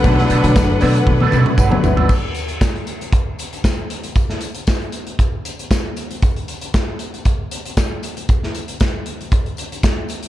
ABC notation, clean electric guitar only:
X:1
M:4/4
L:1/16
Q:1/4=116
K:Bphr
V:1 name="Clean electric guitar"
[F,B,DA] z [F,B,DA] [F,B,DA] z2 [F,B,DA] z2 [F,B,DA] [F,B,DA] z [F,B,DB] z2 [F,B,DA] | z16 | z16 | z16 |
z16 |]